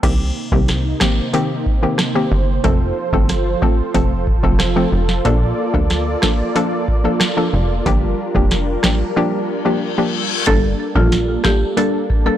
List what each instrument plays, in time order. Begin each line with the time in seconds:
0.03 analog synth bass C2, analog synth pad C3 A#3 D#4 C5, synth pluck D#3 A#3 C4 G4, kick, closed hi-hat, crash
0.52 analog synth bass C2, synth pluck D#3 A#3 C4 G4, kick
0.68 cross-stick, snare, closed hi-hat
1.00 synth pluck D#3 A#3 C4 G4, kick, cross-stick, snare
1.33 synth pluck D#3 A#3 C4 G4, closed hi-hat
1.66 kick
1.83 synth pluck D#3 A#3 C4 G4
1.98 cross-stick, snare, closed hi-hat
2.15 synth pluck D#3 A#3 C4 G4
2.32 analog synth bass G1
2.64 analog synth bass F1, synth pluck F3 A3 C4 A4, analog synth pad F3 F4 A4, kick, closed hi-hat
3.13 analog synth bass G1, synth pluck F3 A3 C4 A4, kick
3.29 cross-stick, snare, closed hi-hat
3.62 synth pluck F3 A3 C4 A4, kick
3.94 analog synth bass F1, synth pluck F3 A3 C4 A4, kick, closed hi-hat
4.27 kick
4.43 analog synth bass F1, synth pluck F3 A3 C4 A4, kick
4.59 cross-stick, snare, closed hi-hat
4.76 synth pluck F3 A3 C4 A4
4.93 analog synth bass F1
5.09 snare
5.25 analog synth bass A#1, synth pluck F3 A#3 D4 A4, analog synth pad A#3 D5, kick, closed hi-hat
5.74 analog synth bass D2, synth pluck F3 A#3 D4 A4, kick
5.90 cross-stick, snare, closed hi-hat
6.22 synth pluck F3 A#3 D4 A4, kick, cross-stick, snare
6.55 synth pluck F3 A#3 D4 A4, closed hi-hat
6.88 kick
7.04 synth pluck F3 A#3 D4 A4
7.20 cross-stick, snare, closed hi-hat
7.37 synth pluck F3 A#3 D4 A4
7.53 analog synth bass F1
7.86 analog synth bass G1, synth pluck F3 A#3 D4 G4, analog synth pad G3 D4 A#4, kick, closed hi-hat
8.35 analog synth bass F1, synth pluck F3 A#3 D4 G4, kick
8.51 cross-stick, snare, closed hi-hat
8.83 synth pluck F3 A#3 D4 G4, kick, cross-stick, snare
9.16 synth pluck F3 A#3 D4 G4, reverse cymbal
9.65 synth pluck F3 A#3 D4 G4
9.98 synth pluck F3 A#3 D4 G4
10.47 analog synth bass G1, synth pluck G3 A#3 D4 A4, analog synth pad G3 A#3 D4 A4, marimba A4, kick, closed hi-hat
10.95 analog synth bass A#1, synth pluck G3 A#3 D4 A4, marimba F4, kick
11.12 snare, closed hi-hat
11.44 synth pluck G3 A#3 D4 A4, marimba G4, kick, cross-stick, snare
11.77 synth pluck G3 A#3 D4 A4, marimba A4, closed hi-hat
12.10 kick
12.26 synth pluck G3 A#3 D4 A4, marimba A4